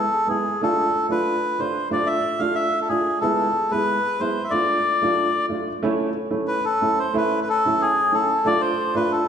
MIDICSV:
0, 0, Header, 1, 3, 480
1, 0, Start_track
1, 0, Tempo, 655022
1, 436, Time_signature, 2, 2, 24, 8
1, 6801, End_track
2, 0, Start_track
2, 0, Title_t, "Melodica"
2, 0, Program_c, 0, 22
2, 0, Note_on_c, 0, 69, 90
2, 207, Note_off_c, 0, 69, 0
2, 211, Note_on_c, 0, 68, 72
2, 450, Note_off_c, 0, 68, 0
2, 460, Note_on_c, 0, 69, 96
2, 783, Note_off_c, 0, 69, 0
2, 817, Note_on_c, 0, 71, 95
2, 1165, Note_on_c, 0, 72, 87
2, 1176, Note_off_c, 0, 71, 0
2, 1383, Note_off_c, 0, 72, 0
2, 1410, Note_on_c, 0, 74, 84
2, 1512, Note_on_c, 0, 76, 87
2, 1525, Note_off_c, 0, 74, 0
2, 1753, Note_on_c, 0, 77, 91
2, 1760, Note_off_c, 0, 76, 0
2, 1865, Note_off_c, 0, 77, 0
2, 1870, Note_on_c, 0, 76, 96
2, 2047, Note_off_c, 0, 76, 0
2, 2063, Note_on_c, 0, 69, 64
2, 2114, Note_off_c, 0, 69, 0
2, 2114, Note_on_c, 0, 68, 81
2, 2337, Note_off_c, 0, 68, 0
2, 2350, Note_on_c, 0, 69, 86
2, 2718, Note_on_c, 0, 71, 96
2, 2723, Note_off_c, 0, 69, 0
2, 3078, Note_on_c, 0, 72, 88
2, 3088, Note_off_c, 0, 71, 0
2, 3255, Note_on_c, 0, 76, 56
2, 3271, Note_off_c, 0, 72, 0
2, 3300, Note_on_c, 0, 74, 87
2, 3311, Note_off_c, 0, 76, 0
2, 3999, Note_off_c, 0, 74, 0
2, 4745, Note_on_c, 0, 71, 90
2, 4874, Note_on_c, 0, 69, 86
2, 4875, Note_off_c, 0, 71, 0
2, 5123, Note_off_c, 0, 69, 0
2, 5125, Note_on_c, 0, 72, 85
2, 5245, Note_off_c, 0, 72, 0
2, 5256, Note_on_c, 0, 71, 80
2, 5422, Note_off_c, 0, 71, 0
2, 5442, Note_on_c, 0, 71, 65
2, 5485, Note_off_c, 0, 71, 0
2, 5489, Note_on_c, 0, 69, 96
2, 5726, Note_on_c, 0, 68, 96
2, 5730, Note_off_c, 0, 69, 0
2, 5966, Note_on_c, 0, 69, 82
2, 5969, Note_off_c, 0, 68, 0
2, 6204, Note_on_c, 0, 74, 96
2, 6209, Note_off_c, 0, 69, 0
2, 6309, Note_on_c, 0, 72, 92
2, 6313, Note_off_c, 0, 74, 0
2, 6561, Note_off_c, 0, 72, 0
2, 6565, Note_on_c, 0, 71, 88
2, 6679, Note_on_c, 0, 69, 86
2, 6685, Note_off_c, 0, 71, 0
2, 6801, Note_off_c, 0, 69, 0
2, 6801, End_track
3, 0, Start_track
3, 0, Title_t, "Upright piano"
3, 0, Program_c, 1, 0
3, 199, Note_on_c, 1, 56, 55
3, 207, Note_on_c, 1, 59, 44
3, 212, Note_on_c, 1, 64, 56
3, 317, Note_off_c, 1, 56, 0
3, 321, Note_off_c, 1, 59, 0
3, 324, Note_off_c, 1, 64, 0
3, 451, Note_on_c, 1, 57, 68
3, 456, Note_on_c, 1, 62, 65
3, 462, Note_on_c, 1, 65, 75
3, 623, Note_off_c, 1, 57, 0
3, 626, Note_off_c, 1, 62, 0
3, 628, Note_off_c, 1, 65, 0
3, 799, Note_on_c, 1, 57, 59
3, 807, Note_on_c, 1, 62, 55
3, 811, Note_on_c, 1, 65, 73
3, 976, Note_off_c, 1, 57, 0
3, 980, Note_off_c, 1, 62, 0
3, 983, Note_off_c, 1, 65, 0
3, 1165, Note_on_c, 1, 57, 48
3, 1171, Note_on_c, 1, 62, 53
3, 1176, Note_on_c, 1, 65, 58
3, 1279, Note_off_c, 1, 57, 0
3, 1282, Note_off_c, 1, 62, 0
3, 1285, Note_off_c, 1, 65, 0
3, 1395, Note_on_c, 1, 57, 66
3, 1403, Note_on_c, 1, 62, 66
3, 1404, Note_on_c, 1, 65, 66
3, 1575, Note_off_c, 1, 57, 0
3, 1579, Note_off_c, 1, 62, 0
3, 1579, Note_off_c, 1, 65, 0
3, 1756, Note_on_c, 1, 57, 63
3, 1761, Note_on_c, 1, 62, 57
3, 1769, Note_on_c, 1, 65, 63
3, 1935, Note_off_c, 1, 57, 0
3, 1938, Note_off_c, 1, 62, 0
3, 1942, Note_off_c, 1, 65, 0
3, 2120, Note_on_c, 1, 57, 55
3, 2126, Note_on_c, 1, 62, 48
3, 2133, Note_on_c, 1, 65, 62
3, 2237, Note_off_c, 1, 57, 0
3, 2240, Note_off_c, 1, 62, 0
3, 2244, Note_off_c, 1, 65, 0
3, 2358, Note_on_c, 1, 56, 75
3, 2364, Note_on_c, 1, 59, 62
3, 2369, Note_on_c, 1, 64, 83
3, 2536, Note_off_c, 1, 56, 0
3, 2539, Note_off_c, 1, 59, 0
3, 2542, Note_off_c, 1, 64, 0
3, 2722, Note_on_c, 1, 56, 63
3, 2732, Note_on_c, 1, 59, 52
3, 2734, Note_on_c, 1, 64, 69
3, 2898, Note_off_c, 1, 56, 0
3, 2903, Note_off_c, 1, 59, 0
3, 2904, Note_off_c, 1, 64, 0
3, 3078, Note_on_c, 1, 56, 49
3, 3083, Note_on_c, 1, 59, 50
3, 3086, Note_on_c, 1, 64, 62
3, 3197, Note_off_c, 1, 56, 0
3, 3199, Note_off_c, 1, 59, 0
3, 3201, Note_off_c, 1, 64, 0
3, 3307, Note_on_c, 1, 57, 58
3, 3313, Note_on_c, 1, 62, 57
3, 3316, Note_on_c, 1, 65, 67
3, 3491, Note_off_c, 1, 57, 0
3, 3494, Note_off_c, 1, 62, 0
3, 3496, Note_off_c, 1, 65, 0
3, 3677, Note_on_c, 1, 57, 59
3, 3685, Note_on_c, 1, 62, 63
3, 3688, Note_on_c, 1, 65, 69
3, 3856, Note_off_c, 1, 57, 0
3, 3860, Note_off_c, 1, 62, 0
3, 3862, Note_off_c, 1, 65, 0
3, 4024, Note_on_c, 1, 57, 65
3, 4030, Note_on_c, 1, 62, 53
3, 4032, Note_on_c, 1, 65, 63
3, 4150, Note_off_c, 1, 57, 0
3, 4153, Note_off_c, 1, 62, 0
3, 4154, Note_off_c, 1, 65, 0
3, 4269, Note_on_c, 1, 57, 94
3, 4276, Note_on_c, 1, 61, 80
3, 4280, Note_on_c, 1, 64, 88
3, 4453, Note_off_c, 1, 57, 0
3, 4457, Note_off_c, 1, 61, 0
3, 4459, Note_off_c, 1, 64, 0
3, 4622, Note_on_c, 1, 57, 72
3, 4623, Note_on_c, 1, 61, 59
3, 4626, Note_on_c, 1, 64, 65
3, 4810, Note_off_c, 1, 57, 0
3, 4810, Note_off_c, 1, 61, 0
3, 4812, Note_off_c, 1, 64, 0
3, 4993, Note_on_c, 1, 57, 54
3, 5000, Note_on_c, 1, 61, 53
3, 5001, Note_on_c, 1, 64, 58
3, 5115, Note_off_c, 1, 57, 0
3, 5119, Note_off_c, 1, 61, 0
3, 5119, Note_off_c, 1, 64, 0
3, 5230, Note_on_c, 1, 57, 79
3, 5233, Note_on_c, 1, 61, 58
3, 5241, Note_on_c, 1, 64, 90
3, 5414, Note_off_c, 1, 57, 0
3, 5415, Note_off_c, 1, 61, 0
3, 5419, Note_off_c, 1, 64, 0
3, 5609, Note_on_c, 1, 57, 64
3, 5615, Note_on_c, 1, 61, 66
3, 5616, Note_on_c, 1, 64, 81
3, 5783, Note_off_c, 1, 57, 0
3, 5786, Note_off_c, 1, 61, 0
3, 5787, Note_off_c, 1, 64, 0
3, 5951, Note_on_c, 1, 57, 58
3, 5955, Note_on_c, 1, 61, 57
3, 5960, Note_on_c, 1, 64, 55
3, 6074, Note_off_c, 1, 57, 0
3, 6076, Note_off_c, 1, 61, 0
3, 6079, Note_off_c, 1, 64, 0
3, 6191, Note_on_c, 1, 57, 70
3, 6197, Note_on_c, 1, 62, 59
3, 6204, Note_on_c, 1, 65, 79
3, 6374, Note_off_c, 1, 57, 0
3, 6377, Note_off_c, 1, 62, 0
3, 6380, Note_off_c, 1, 65, 0
3, 6557, Note_on_c, 1, 57, 68
3, 6558, Note_on_c, 1, 62, 66
3, 6565, Note_on_c, 1, 65, 71
3, 6737, Note_off_c, 1, 57, 0
3, 6738, Note_off_c, 1, 62, 0
3, 6741, Note_off_c, 1, 65, 0
3, 6801, End_track
0, 0, End_of_file